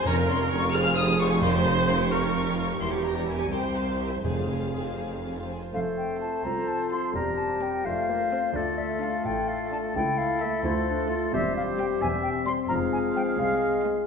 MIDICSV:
0, 0, Header, 1, 12, 480
1, 0, Start_track
1, 0, Key_signature, -4, "minor"
1, 0, Tempo, 456621
1, 64, Time_signature, 6, 3, 24, 8
1, 2945, Tempo, 487409
1, 5836, Key_signature, -1, "major"
1, 6305, Tempo, 468019
1, 9665, Tempo, 458365
1, 14461, End_track
2, 0, Start_track
2, 0, Title_t, "Flute"
2, 0, Program_c, 0, 73
2, 5838, Note_on_c, 0, 77, 67
2, 5897, Note_off_c, 0, 77, 0
2, 6067, Note_on_c, 0, 79, 58
2, 6294, Note_off_c, 0, 79, 0
2, 6300, Note_on_c, 0, 81, 61
2, 6535, Note_on_c, 0, 82, 73
2, 6551, Note_off_c, 0, 81, 0
2, 6784, Note_on_c, 0, 81, 66
2, 6799, Note_off_c, 0, 82, 0
2, 7010, Note_off_c, 0, 81, 0
2, 7016, Note_on_c, 0, 84, 65
2, 7255, Note_off_c, 0, 84, 0
2, 7265, Note_on_c, 0, 82, 72
2, 7498, Note_on_c, 0, 81, 64
2, 7514, Note_off_c, 0, 82, 0
2, 7750, Note_on_c, 0, 79, 61
2, 7765, Note_off_c, 0, 81, 0
2, 7982, Note_on_c, 0, 77, 67
2, 7998, Note_off_c, 0, 79, 0
2, 8683, Note_off_c, 0, 77, 0
2, 8689, Note_on_c, 0, 74, 75
2, 8937, Note_on_c, 0, 76, 66
2, 8952, Note_off_c, 0, 74, 0
2, 9180, Note_on_c, 0, 77, 68
2, 9195, Note_off_c, 0, 76, 0
2, 9427, Note_on_c, 0, 79, 70
2, 9443, Note_off_c, 0, 77, 0
2, 9661, Note_on_c, 0, 77, 71
2, 9677, Note_off_c, 0, 79, 0
2, 9899, Note_off_c, 0, 77, 0
2, 9905, Note_on_c, 0, 81, 79
2, 9968, Note_off_c, 0, 81, 0
2, 10152, Note_on_c, 0, 79, 87
2, 10385, Note_on_c, 0, 77, 78
2, 10401, Note_off_c, 0, 79, 0
2, 10631, Note_on_c, 0, 76, 69
2, 10646, Note_off_c, 0, 77, 0
2, 10861, Note_off_c, 0, 76, 0
2, 10867, Note_on_c, 0, 72, 73
2, 11268, Note_off_c, 0, 72, 0
2, 11595, Note_on_c, 0, 76, 92
2, 11829, Note_off_c, 0, 76, 0
2, 11841, Note_on_c, 0, 77, 77
2, 11904, Note_off_c, 0, 77, 0
2, 12077, Note_on_c, 0, 79, 70
2, 12140, Note_off_c, 0, 79, 0
2, 12312, Note_on_c, 0, 80, 87
2, 12374, Note_off_c, 0, 80, 0
2, 12535, Note_on_c, 0, 79, 85
2, 12598, Note_off_c, 0, 79, 0
2, 12777, Note_on_c, 0, 84, 90
2, 12840, Note_off_c, 0, 84, 0
2, 13011, Note_on_c, 0, 82, 98
2, 13073, Note_off_c, 0, 82, 0
2, 13264, Note_on_c, 0, 80, 80
2, 13327, Note_off_c, 0, 80, 0
2, 13510, Note_on_c, 0, 79, 73
2, 13573, Note_off_c, 0, 79, 0
2, 13751, Note_on_c, 0, 77, 81
2, 14206, Note_off_c, 0, 77, 0
2, 14461, End_track
3, 0, Start_track
3, 0, Title_t, "Violin section"
3, 0, Program_c, 1, 48
3, 63, Note_on_c, 1, 82, 112
3, 147, Note_off_c, 1, 82, 0
3, 294, Note_on_c, 1, 84, 92
3, 533, Note_off_c, 1, 84, 0
3, 536, Note_on_c, 1, 85, 108
3, 767, Note_on_c, 1, 89, 124
3, 772, Note_off_c, 1, 85, 0
3, 1011, Note_off_c, 1, 89, 0
3, 1015, Note_on_c, 1, 87, 110
3, 1254, Note_off_c, 1, 87, 0
3, 1257, Note_on_c, 1, 85, 99
3, 1489, Note_on_c, 1, 84, 108
3, 1494, Note_off_c, 1, 85, 0
3, 1573, Note_off_c, 1, 84, 0
3, 1730, Note_on_c, 1, 82, 78
3, 1814, Note_off_c, 1, 82, 0
3, 1972, Note_on_c, 1, 84, 94
3, 2056, Note_off_c, 1, 84, 0
3, 2206, Note_on_c, 1, 85, 96
3, 2925, Note_off_c, 1, 85, 0
3, 2940, Note_on_c, 1, 84, 99
3, 3019, Note_off_c, 1, 84, 0
3, 3175, Note_on_c, 1, 82, 65
3, 3404, Note_off_c, 1, 82, 0
3, 3409, Note_on_c, 1, 80, 79
3, 3641, Note_off_c, 1, 80, 0
3, 3646, Note_on_c, 1, 79, 73
3, 3884, Note_off_c, 1, 79, 0
3, 3890, Note_on_c, 1, 77, 67
3, 4119, Note_on_c, 1, 76, 62
3, 4126, Note_off_c, 1, 77, 0
3, 4198, Note_off_c, 1, 76, 0
3, 4373, Note_on_c, 1, 77, 64
3, 5575, Note_off_c, 1, 77, 0
3, 6306, Note_on_c, 1, 72, 45
3, 6487, Note_off_c, 1, 72, 0
3, 7024, Note_on_c, 1, 72, 47
3, 7202, Note_off_c, 1, 72, 0
3, 7745, Note_on_c, 1, 72, 49
3, 7927, Note_off_c, 1, 72, 0
3, 8474, Note_on_c, 1, 69, 50
3, 8647, Note_off_c, 1, 69, 0
3, 9189, Note_on_c, 1, 69, 50
3, 9367, Note_off_c, 1, 69, 0
3, 9916, Note_on_c, 1, 69, 54
3, 10094, Note_off_c, 1, 69, 0
3, 10624, Note_on_c, 1, 69, 61
3, 10808, Note_off_c, 1, 69, 0
3, 11354, Note_on_c, 1, 69, 60
3, 11533, Note_off_c, 1, 69, 0
3, 12073, Note_on_c, 1, 72, 66
3, 12249, Note_off_c, 1, 72, 0
3, 12786, Note_on_c, 1, 72, 68
3, 12962, Note_off_c, 1, 72, 0
3, 13505, Note_on_c, 1, 72, 62
3, 13682, Note_off_c, 1, 72, 0
3, 14233, Note_on_c, 1, 72, 56
3, 14410, Note_off_c, 1, 72, 0
3, 14461, End_track
4, 0, Start_track
4, 0, Title_t, "Oboe"
4, 0, Program_c, 2, 68
4, 5839, Note_on_c, 2, 72, 42
4, 7225, Note_off_c, 2, 72, 0
4, 7268, Note_on_c, 2, 70, 46
4, 7990, Note_on_c, 2, 72, 49
4, 8005, Note_off_c, 2, 70, 0
4, 8712, Note_on_c, 2, 69, 52
4, 8727, Note_off_c, 2, 72, 0
4, 10153, Note_off_c, 2, 69, 0
4, 10160, Note_on_c, 2, 69, 56
4, 11571, Note_off_c, 2, 69, 0
4, 11600, Note_on_c, 2, 72, 59
4, 12311, Note_on_c, 2, 76, 54
4, 12327, Note_off_c, 2, 72, 0
4, 12771, Note_off_c, 2, 76, 0
4, 13024, Note_on_c, 2, 77, 65
4, 14461, Note_off_c, 2, 77, 0
4, 14461, End_track
5, 0, Start_track
5, 0, Title_t, "Violin section"
5, 0, Program_c, 3, 48
5, 58, Note_on_c, 3, 73, 75
5, 61, Note_on_c, 3, 61, 75
5, 172, Note_off_c, 3, 73, 0
5, 174, Note_off_c, 3, 61, 0
5, 175, Note_on_c, 3, 65, 62
5, 176, Note_on_c, 3, 70, 64
5, 296, Note_on_c, 3, 61, 68
5, 298, Note_on_c, 3, 73, 63
5, 299, Note_off_c, 3, 65, 0
5, 300, Note_off_c, 3, 70, 0
5, 417, Note_on_c, 3, 65, 57
5, 417, Note_on_c, 3, 70, 60
5, 419, Note_off_c, 3, 61, 0
5, 420, Note_off_c, 3, 73, 0
5, 537, Note_on_c, 3, 61, 64
5, 537, Note_on_c, 3, 73, 64
5, 539, Note_off_c, 3, 65, 0
5, 539, Note_off_c, 3, 70, 0
5, 650, Note_off_c, 3, 61, 0
5, 650, Note_off_c, 3, 73, 0
5, 652, Note_on_c, 3, 65, 64
5, 653, Note_on_c, 3, 70, 69
5, 762, Note_off_c, 3, 65, 0
5, 775, Note_on_c, 3, 65, 74
5, 776, Note_off_c, 3, 70, 0
5, 776, Note_on_c, 3, 72, 62
5, 887, Note_off_c, 3, 65, 0
5, 887, Note_on_c, 3, 77, 57
5, 888, Note_off_c, 3, 72, 0
5, 892, Note_on_c, 3, 68, 61
5, 1007, Note_on_c, 3, 72, 55
5, 1010, Note_on_c, 3, 65, 57
5, 1011, Note_off_c, 3, 77, 0
5, 1014, Note_off_c, 3, 68, 0
5, 1131, Note_off_c, 3, 72, 0
5, 1132, Note_on_c, 3, 68, 59
5, 1133, Note_off_c, 3, 65, 0
5, 1135, Note_on_c, 3, 77, 59
5, 1241, Note_on_c, 3, 72, 64
5, 1244, Note_on_c, 3, 65, 65
5, 1253, Note_off_c, 3, 68, 0
5, 1254, Note_off_c, 3, 77, 0
5, 1358, Note_off_c, 3, 72, 0
5, 1360, Note_off_c, 3, 65, 0
5, 1369, Note_on_c, 3, 77, 60
5, 1371, Note_on_c, 3, 68, 60
5, 1484, Note_on_c, 3, 70, 70
5, 1486, Note_on_c, 3, 65, 70
5, 1490, Note_off_c, 3, 77, 0
5, 1492, Note_off_c, 3, 68, 0
5, 1597, Note_on_c, 3, 67, 55
5, 1598, Note_on_c, 3, 73, 62
5, 1599, Note_off_c, 3, 70, 0
5, 1600, Note_off_c, 3, 65, 0
5, 1721, Note_on_c, 3, 65, 64
5, 1722, Note_on_c, 3, 70, 64
5, 1726, Note_off_c, 3, 67, 0
5, 1726, Note_off_c, 3, 73, 0
5, 1842, Note_on_c, 3, 73, 55
5, 1845, Note_on_c, 3, 67, 59
5, 1849, Note_off_c, 3, 65, 0
5, 1849, Note_off_c, 3, 70, 0
5, 1960, Note_on_c, 3, 65, 65
5, 1963, Note_on_c, 3, 70, 57
5, 1970, Note_off_c, 3, 73, 0
5, 1971, Note_off_c, 3, 67, 0
5, 2079, Note_off_c, 3, 65, 0
5, 2081, Note_off_c, 3, 70, 0
5, 2083, Note_on_c, 3, 73, 57
5, 2088, Note_on_c, 3, 67, 59
5, 2201, Note_on_c, 3, 65, 68
5, 2201, Note_on_c, 3, 70, 60
5, 2210, Note_off_c, 3, 73, 0
5, 2212, Note_off_c, 3, 67, 0
5, 2325, Note_on_c, 3, 73, 51
5, 2327, Note_on_c, 3, 67, 51
5, 2329, Note_off_c, 3, 65, 0
5, 2329, Note_off_c, 3, 70, 0
5, 2448, Note_on_c, 3, 70, 49
5, 2451, Note_off_c, 3, 73, 0
5, 2452, Note_off_c, 3, 67, 0
5, 2453, Note_on_c, 3, 65, 50
5, 2565, Note_off_c, 3, 70, 0
5, 2567, Note_off_c, 3, 65, 0
5, 2568, Note_on_c, 3, 73, 57
5, 2569, Note_on_c, 3, 67, 57
5, 2690, Note_on_c, 3, 70, 60
5, 2691, Note_on_c, 3, 65, 54
5, 2695, Note_off_c, 3, 67, 0
5, 2695, Note_off_c, 3, 73, 0
5, 2813, Note_on_c, 3, 67, 55
5, 2814, Note_on_c, 3, 73, 56
5, 2818, Note_off_c, 3, 65, 0
5, 2818, Note_off_c, 3, 70, 0
5, 2934, Note_on_c, 3, 64, 66
5, 2939, Note_on_c, 3, 70, 60
5, 2941, Note_off_c, 3, 67, 0
5, 2941, Note_off_c, 3, 73, 0
5, 3046, Note_on_c, 3, 67, 52
5, 3046, Note_on_c, 3, 73, 52
5, 3047, Note_off_c, 3, 64, 0
5, 3050, Note_off_c, 3, 70, 0
5, 3165, Note_on_c, 3, 70, 54
5, 3167, Note_on_c, 3, 64, 50
5, 3169, Note_off_c, 3, 67, 0
5, 3169, Note_off_c, 3, 73, 0
5, 3279, Note_on_c, 3, 67, 49
5, 3279, Note_on_c, 3, 73, 46
5, 3287, Note_off_c, 3, 70, 0
5, 3288, Note_off_c, 3, 64, 0
5, 3394, Note_on_c, 3, 70, 47
5, 3395, Note_on_c, 3, 64, 45
5, 3403, Note_off_c, 3, 67, 0
5, 3403, Note_off_c, 3, 73, 0
5, 3510, Note_off_c, 3, 70, 0
5, 3511, Note_off_c, 3, 64, 0
5, 3524, Note_on_c, 3, 67, 50
5, 3524, Note_on_c, 3, 73, 51
5, 3625, Note_off_c, 3, 67, 0
5, 3637, Note_on_c, 3, 67, 51
5, 3641, Note_on_c, 3, 70, 57
5, 3644, Note_off_c, 3, 73, 0
5, 3752, Note_off_c, 3, 67, 0
5, 3754, Note_off_c, 3, 70, 0
5, 3764, Note_on_c, 3, 72, 47
5, 3766, Note_on_c, 3, 64, 45
5, 3879, Note_on_c, 3, 67, 39
5, 3881, Note_on_c, 3, 70, 39
5, 3883, Note_off_c, 3, 72, 0
5, 3884, Note_off_c, 3, 64, 0
5, 4001, Note_off_c, 3, 67, 0
5, 4002, Note_off_c, 3, 70, 0
5, 4007, Note_on_c, 3, 72, 39
5, 4008, Note_on_c, 3, 64, 41
5, 4125, Note_off_c, 3, 64, 0
5, 4125, Note_off_c, 3, 72, 0
5, 4126, Note_on_c, 3, 70, 41
5, 4127, Note_on_c, 3, 67, 44
5, 4237, Note_off_c, 3, 67, 0
5, 4237, Note_off_c, 3, 70, 0
5, 4245, Note_on_c, 3, 64, 38
5, 4247, Note_on_c, 3, 72, 39
5, 4360, Note_on_c, 3, 68, 45
5, 4362, Note_on_c, 3, 60, 46
5, 4365, Note_off_c, 3, 64, 0
5, 4366, Note_off_c, 3, 72, 0
5, 4475, Note_off_c, 3, 68, 0
5, 4476, Note_off_c, 3, 60, 0
5, 4488, Note_on_c, 3, 65, 40
5, 4488, Note_on_c, 3, 72, 42
5, 4609, Note_off_c, 3, 65, 0
5, 4609, Note_off_c, 3, 72, 0
5, 4609, Note_on_c, 3, 60, 38
5, 4609, Note_on_c, 3, 68, 42
5, 4726, Note_on_c, 3, 72, 38
5, 4727, Note_on_c, 3, 65, 38
5, 4731, Note_off_c, 3, 60, 0
5, 4731, Note_off_c, 3, 68, 0
5, 4851, Note_off_c, 3, 72, 0
5, 4852, Note_off_c, 3, 65, 0
5, 4855, Note_on_c, 3, 60, 39
5, 4856, Note_on_c, 3, 68, 42
5, 4969, Note_off_c, 3, 60, 0
5, 4970, Note_off_c, 3, 68, 0
5, 4972, Note_on_c, 3, 72, 41
5, 4977, Note_on_c, 3, 65, 38
5, 5098, Note_off_c, 3, 72, 0
5, 5100, Note_off_c, 3, 65, 0
5, 5100, Note_on_c, 3, 68, 41
5, 5103, Note_on_c, 3, 60, 45
5, 5224, Note_off_c, 3, 68, 0
5, 5224, Note_on_c, 3, 72, 38
5, 5226, Note_off_c, 3, 60, 0
5, 5226, Note_on_c, 3, 65, 38
5, 5346, Note_on_c, 3, 68, 33
5, 5348, Note_off_c, 3, 72, 0
5, 5349, Note_off_c, 3, 65, 0
5, 5349, Note_on_c, 3, 60, 34
5, 5462, Note_off_c, 3, 68, 0
5, 5464, Note_off_c, 3, 60, 0
5, 5470, Note_on_c, 3, 65, 38
5, 5471, Note_on_c, 3, 72, 39
5, 5589, Note_on_c, 3, 68, 37
5, 5590, Note_on_c, 3, 60, 44
5, 5594, Note_off_c, 3, 65, 0
5, 5595, Note_off_c, 3, 72, 0
5, 5705, Note_on_c, 3, 65, 37
5, 5708, Note_on_c, 3, 72, 36
5, 5714, Note_off_c, 3, 60, 0
5, 5714, Note_off_c, 3, 68, 0
5, 5830, Note_off_c, 3, 65, 0
5, 5831, Note_off_c, 3, 72, 0
5, 6301, Note_on_c, 3, 69, 47
5, 6484, Note_off_c, 3, 69, 0
5, 7023, Note_on_c, 3, 69, 52
5, 7202, Note_off_c, 3, 69, 0
5, 7749, Note_on_c, 3, 67, 48
5, 7929, Note_off_c, 3, 67, 0
5, 8470, Note_on_c, 3, 65, 49
5, 8645, Note_off_c, 3, 65, 0
5, 9186, Note_on_c, 3, 65, 57
5, 9365, Note_off_c, 3, 65, 0
5, 9903, Note_on_c, 3, 65, 53
5, 10087, Note_off_c, 3, 65, 0
5, 10627, Note_on_c, 3, 64, 62
5, 10809, Note_off_c, 3, 64, 0
5, 11351, Note_on_c, 3, 65, 61
5, 11532, Note_off_c, 3, 65, 0
5, 12075, Note_on_c, 3, 67, 67
5, 12250, Note_off_c, 3, 67, 0
5, 12785, Note_on_c, 3, 67, 65
5, 12961, Note_off_c, 3, 67, 0
5, 13503, Note_on_c, 3, 65, 59
5, 13680, Note_off_c, 3, 65, 0
5, 14221, Note_on_c, 3, 65, 62
5, 14404, Note_off_c, 3, 65, 0
5, 14461, End_track
6, 0, Start_track
6, 0, Title_t, "Clarinet"
6, 0, Program_c, 4, 71
6, 5842, Note_on_c, 4, 69, 44
6, 6511, Note_off_c, 4, 69, 0
6, 6554, Note_on_c, 4, 69, 43
6, 7272, Note_on_c, 4, 67, 42
6, 7287, Note_off_c, 4, 69, 0
6, 7992, Note_off_c, 4, 67, 0
6, 7998, Note_on_c, 4, 65, 41
6, 8694, Note_off_c, 4, 65, 0
6, 8719, Note_on_c, 4, 65, 55
6, 10132, Note_off_c, 4, 65, 0
6, 10155, Note_on_c, 4, 64, 51
6, 10861, Note_off_c, 4, 64, 0
6, 10873, Note_on_c, 4, 64, 55
6, 10982, Note_off_c, 4, 64, 0
6, 11115, Note_on_c, 4, 62, 59
6, 11346, Note_off_c, 4, 62, 0
6, 11353, Note_on_c, 4, 65, 65
6, 11603, Note_on_c, 4, 67, 61
6, 11618, Note_off_c, 4, 65, 0
6, 12740, Note_off_c, 4, 67, 0
6, 13027, Note_on_c, 4, 68, 65
6, 14461, Note_off_c, 4, 68, 0
6, 14461, End_track
7, 0, Start_track
7, 0, Title_t, "Viola section"
7, 0, Program_c, 5, 48
7, 63, Note_on_c, 5, 70, 92
7, 779, Note_off_c, 5, 70, 0
7, 783, Note_on_c, 5, 68, 85
7, 1494, Note_off_c, 5, 68, 0
7, 1494, Note_on_c, 5, 72, 103
7, 2203, Note_off_c, 5, 72, 0
7, 2219, Note_on_c, 5, 70, 75
7, 2942, Note_on_c, 5, 67, 74
7, 2947, Note_off_c, 5, 70, 0
7, 3630, Note_off_c, 5, 67, 0
7, 3644, Note_on_c, 5, 72, 67
7, 4349, Note_off_c, 5, 72, 0
7, 4366, Note_on_c, 5, 68, 53
7, 5450, Note_off_c, 5, 68, 0
7, 6305, Note_on_c, 5, 65, 47
7, 6486, Note_off_c, 5, 65, 0
7, 7027, Note_on_c, 5, 65, 52
7, 7204, Note_off_c, 5, 65, 0
7, 7754, Note_on_c, 5, 60, 55
7, 7932, Note_off_c, 5, 60, 0
7, 8471, Note_on_c, 5, 60, 51
7, 8646, Note_off_c, 5, 60, 0
7, 9185, Note_on_c, 5, 62, 58
7, 9364, Note_off_c, 5, 62, 0
7, 9907, Note_on_c, 5, 62, 52
7, 10089, Note_off_c, 5, 62, 0
7, 10632, Note_on_c, 5, 57, 62
7, 10812, Note_off_c, 5, 57, 0
7, 11358, Note_on_c, 5, 57, 62
7, 11536, Note_off_c, 5, 57, 0
7, 12076, Note_on_c, 5, 55, 66
7, 12251, Note_off_c, 5, 55, 0
7, 12781, Note_on_c, 5, 55, 60
7, 12959, Note_off_c, 5, 55, 0
7, 13506, Note_on_c, 5, 56, 67
7, 13682, Note_off_c, 5, 56, 0
7, 14224, Note_on_c, 5, 56, 58
7, 14405, Note_off_c, 5, 56, 0
7, 14461, End_track
8, 0, Start_track
8, 0, Title_t, "French horn section"
8, 0, Program_c, 6, 60
8, 5828, Note_on_c, 6, 60, 51
8, 5830, Note_on_c, 6, 69, 44
8, 7221, Note_off_c, 6, 69, 0
8, 7256, Note_on_c, 6, 67, 51
8, 7946, Note_off_c, 6, 60, 0
8, 7987, Note_off_c, 6, 67, 0
8, 7990, Note_on_c, 6, 57, 49
8, 7990, Note_on_c, 6, 65, 41
8, 10153, Note_off_c, 6, 65, 0
8, 10159, Note_on_c, 6, 64, 53
8, 10857, Note_off_c, 6, 57, 0
8, 10863, Note_off_c, 6, 64, 0
8, 10867, Note_on_c, 6, 65, 53
8, 10870, Note_on_c, 6, 57, 53
8, 11579, Note_off_c, 6, 57, 0
8, 11593, Note_off_c, 6, 65, 0
8, 11598, Note_on_c, 6, 55, 65
8, 11600, Note_on_c, 6, 60, 62
8, 12841, Note_off_c, 6, 55, 0
8, 13019, Note_on_c, 6, 56, 63
8, 14437, Note_off_c, 6, 56, 0
8, 14461, Note_off_c, 6, 60, 0
8, 14461, End_track
9, 0, Start_track
9, 0, Title_t, "Bassoon"
9, 0, Program_c, 7, 70
9, 5842, Note_on_c, 7, 57, 47
9, 6511, Note_off_c, 7, 57, 0
9, 6555, Note_on_c, 7, 53, 51
9, 7270, Note_on_c, 7, 55, 48
9, 7285, Note_off_c, 7, 53, 0
9, 7988, Note_on_c, 7, 57, 51
9, 8004, Note_off_c, 7, 55, 0
9, 8226, Note_off_c, 7, 57, 0
9, 8232, Note_on_c, 7, 58, 51
9, 8339, Note_off_c, 7, 58, 0
9, 8469, Note_on_c, 7, 60, 58
9, 8576, Note_off_c, 7, 60, 0
9, 8710, Note_on_c, 7, 57, 49
9, 10127, Note_off_c, 7, 57, 0
9, 10158, Note_on_c, 7, 57, 52
9, 11570, Note_off_c, 7, 57, 0
9, 11604, Note_on_c, 7, 55, 53
9, 12718, Note_off_c, 7, 55, 0
9, 13024, Note_on_c, 7, 53, 56
9, 13752, Note_on_c, 7, 56, 62
9, 13768, Note_off_c, 7, 53, 0
9, 14461, Note_off_c, 7, 56, 0
9, 14461, End_track
10, 0, Start_track
10, 0, Title_t, "Timpani"
10, 0, Program_c, 8, 47
10, 59, Note_on_c, 8, 41, 91
10, 735, Note_off_c, 8, 41, 0
10, 1489, Note_on_c, 8, 41, 85
10, 2173, Note_off_c, 8, 41, 0
10, 4365, Note_on_c, 8, 41, 82
10, 5062, Note_off_c, 8, 41, 0
10, 14461, End_track
11, 0, Start_track
11, 0, Title_t, "Cello section"
11, 0, Program_c, 10, 48
11, 59, Note_on_c, 10, 41, 72
11, 2900, Note_off_c, 10, 41, 0
11, 2945, Note_on_c, 10, 40, 62
11, 3632, Note_off_c, 10, 40, 0
11, 3644, Note_on_c, 10, 36, 59
11, 4363, Note_off_c, 10, 36, 0
11, 4363, Note_on_c, 10, 41, 49
11, 5606, Note_off_c, 10, 41, 0
11, 5836, Note_on_c, 10, 41, 54
11, 6399, Note_off_c, 10, 41, 0
11, 6545, Note_on_c, 10, 36, 51
11, 7113, Note_off_c, 10, 36, 0
11, 7262, Note_on_c, 10, 40, 54
11, 7840, Note_off_c, 10, 40, 0
11, 7991, Note_on_c, 10, 41, 59
11, 8557, Note_off_c, 10, 41, 0
11, 8702, Note_on_c, 10, 38, 58
11, 9275, Note_off_c, 10, 38, 0
11, 9419, Note_on_c, 10, 45, 63
11, 10000, Note_off_c, 10, 45, 0
11, 10155, Note_on_c, 10, 37, 59
11, 10725, Note_off_c, 10, 37, 0
11, 10868, Note_on_c, 10, 38, 76
11, 11443, Note_off_c, 10, 38, 0
11, 11592, Note_on_c, 10, 40, 77
11, 12159, Note_off_c, 10, 40, 0
11, 12305, Note_on_c, 10, 40, 67
11, 12869, Note_off_c, 10, 40, 0
11, 13018, Note_on_c, 10, 41, 67
11, 13590, Note_off_c, 10, 41, 0
11, 13745, Note_on_c, 10, 36, 68
11, 14317, Note_off_c, 10, 36, 0
11, 14461, End_track
12, 0, Start_track
12, 0, Title_t, "Double bass section"
12, 0, Program_c, 11, 48
12, 61, Note_on_c, 11, 29, 92
12, 2901, Note_off_c, 11, 29, 0
12, 2938, Note_on_c, 11, 28, 64
12, 3628, Note_off_c, 11, 28, 0
12, 3645, Note_on_c, 11, 36, 52
12, 4363, Note_on_c, 11, 29, 59
12, 4364, Note_off_c, 11, 36, 0
12, 5606, Note_off_c, 11, 29, 0
12, 5842, Note_on_c, 11, 29, 59
12, 6403, Note_off_c, 11, 29, 0
12, 6546, Note_on_c, 11, 36, 48
12, 7114, Note_off_c, 11, 36, 0
12, 7267, Note_on_c, 11, 28, 56
12, 7843, Note_off_c, 11, 28, 0
12, 7992, Note_on_c, 11, 29, 57
12, 8557, Note_off_c, 11, 29, 0
12, 8701, Note_on_c, 11, 38, 64
12, 9274, Note_off_c, 11, 38, 0
12, 9431, Note_on_c, 11, 33, 61
12, 10006, Note_off_c, 11, 33, 0
12, 10149, Note_on_c, 11, 37, 72
12, 10722, Note_off_c, 11, 37, 0
12, 10871, Note_on_c, 11, 38, 68
12, 11445, Note_off_c, 11, 38, 0
12, 11594, Note_on_c, 11, 28, 77
12, 12160, Note_off_c, 11, 28, 0
12, 12306, Note_on_c, 11, 28, 65
12, 12869, Note_off_c, 11, 28, 0
12, 13028, Note_on_c, 11, 29, 75
12, 13594, Note_off_c, 11, 29, 0
12, 13744, Note_on_c, 11, 36, 63
12, 14317, Note_off_c, 11, 36, 0
12, 14461, End_track
0, 0, End_of_file